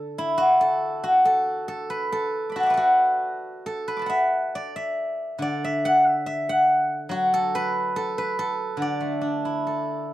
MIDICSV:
0, 0, Header, 1, 2, 480
1, 0, Start_track
1, 0, Tempo, 854701
1, 105, Time_signature, 2, 2, 24, 8
1, 1066, Tempo, 877193
1, 2986, Tempo, 849858
1, 4906, Tempo, 883652
1, 5628, End_track
2, 0, Start_track
2, 0, Title_t, "Guzheng"
2, 0, Program_c, 0, 107
2, 0, Note_on_c, 0, 50, 47
2, 0, Note_on_c, 0, 69, 64
2, 0, Note_on_c, 0, 71, 60
2, 0, Note_on_c, 0, 74, 60
2, 103, Note_on_c, 0, 64, 71
2, 174, Note_off_c, 0, 74, 0
2, 211, Note_on_c, 0, 66, 67
2, 339, Note_off_c, 0, 69, 0
2, 341, Note_on_c, 0, 69, 61
2, 416, Note_off_c, 0, 71, 0
2, 575, Note_off_c, 0, 50, 0
2, 579, Note_off_c, 0, 66, 0
2, 581, Note_on_c, 0, 66, 62
2, 702, Note_off_c, 0, 69, 0
2, 704, Note_on_c, 0, 69, 62
2, 941, Note_off_c, 0, 69, 0
2, 944, Note_on_c, 0, 69, 60
2, 1066, Note_on_c, 0, 71, 62
2, 1187, Note_off_c, 0, 69, 0
2, 1190, Note_on_c, 0, 69, 62
2, 1393, Note_on_c, 0, 86, 27
2, 1405, Note_on_c, 0, 83, 30
2, 1425, Note_off_c, 0, 66, 0
2, 1427, Note_on_c, 0, 66, 58
2, 1429, Note_on_c, 0, 81, 32
2, 1452, Note_on_c, 0, 78, 29
2, 1467, Note_on_c, 0, 76, 38
2, 1485, Note_on_c, 0, 74, 34
2, 1503, Note_off_c, 0, 71, 0
2, 1505, Note_on_c, 0, 71, 43
2, 1523, Note_off_c, 0, 69, 0
2, 1525, Note_on_c, 0, 69, 42
2, 1542, Note_off_c, 0, 66, 0
2, 1545, Note_on_c, 0, 66, 57
2, 1555, Note_off_c, 0, 64, 0
2, 2028, Note_off_c, 0, 69, 0
2, 2030, Note_on_c, 0, 69, 61
2, 2059, Note_off_c, 0, 86, 0
2, 2144, Note_off_c, 0, 83, 0
2, 2147, Note_off_c, 0, 71, 0
2, 2149, Note_on_c, 0, 71, 61
2, 2199, Note_on_c, 0, 86, 29
2, 2212, Note_on_c, 0, 83, 32
2, 2221, Note_off_c, 0, 81, 0
2, 2225, Note_on_c, 0, 81, 43
2, 2248, Note_off_c, 0, 78, 0
2, 2250, Note_on_c, 0, 78, 42
2, 2266, Note_off_c, 0, 76, 0
2, 2268, Note_on_c, 0, 76, 69
2, 2495, Note_off_c, 0, 74, 0
2, 2518, Note_on_c, 0, 74, 64
2, 2629, Note_off_c, 0, 76, 0
2, 2631, Note_on_c, 0, 76, 62
2, 2865, Note_off_c, 0, 86, 0
2, 2874, Note_off_c, 0, 66, 0
2, 2950, Note_off_c, 0, 83, 0
2, 2974, Note_on_c, 0, 50, 43
2, 2992, Note_off_c, 0, 74, 0
2, 2994, Note_on_c, 0, 74, 70
2, 3018, Note_off_c, 0, 81, 0
2, 3118, Note_off_c, 0, 76, 0
2, 3120, Note_on_c, 0, 76, 71
2, 3132, Note_off_c, 0, 78, 0
2, 3237, Note_on_c, 0, 78, 80
2, 3239, Note_off_c, 0, 69, 0
2, 3277, Note_off_c, 0, 71, 0
2, 3378, Note_off_c, 0, 76, 0
2, 3378, Note_off_c, 0, 78, 0
2, 3378, Note_on_c, 0, 76, 80
2, 3470, Note_off_c, 0, 76, 0
2, 3470, Note_on_c, 0, 76, 67
2, 3599, Note_on_c, 0, 78, 73
2, 3938, Note_on_c, 0, 54, 50
2, 3949, Note_on_c, 0, 66, 69
2, 4037, Note_off_c, 0, 74, 0
2, 4076, Note_on_c, 0, 69, 75
2, 4196, Note_on_c, 0, 71, 76
2, 4415, Note_off_c, 0, 50, 0
2, 4427, Note_off_c, 0, 69, 0
2, 4429, Note_on_c, 0, 69, 70
2, 4441, Note_off_c, 0, 76, 0
2, 4505, Note_off_c, 0, 78, 0
2, 4550, Note_off_c, 0, 71, 0
2, 4552, Note_on_c, 0, 71, 65
2, 4667, Note_off_c, 0, 69, 0
2, 4670, Note_on_c, 0, 69, 74
2, 4885, Note_on_c, 0, 50, 46
2, 4913, Note_on_c, 0, 74, 66
2, 5014, Note_on_c, 0, 57, 35
2, 5127, Note_on_c, 0, 62, 38
2, 5256, Note_on_c, 0, 64, 32
2, 5306, Note_off_c, 0, 66, 0
2, 5371, Note_off_c, 0, 69, 0
2, 5373, Note_on_c, 0, 69, 34
2, 5379, Note_off_c, 0, 54, 0
2, 5628, Note_off_c, 0, 50, 0
2, 5628, Note_off_c, 0, 57, 0
2, 5628, Note_off_c, 0, 62, 0
2, 5628, Note_off_c, 0, 64, 0
2, 5628, Note_off_c, 0, 69, 0
2, 5628, Note_off_c, 0, 71, 0
2, 5628, Note_off_c, 0, 74, 0
2, 5628, End_track
0, 0, End_of_file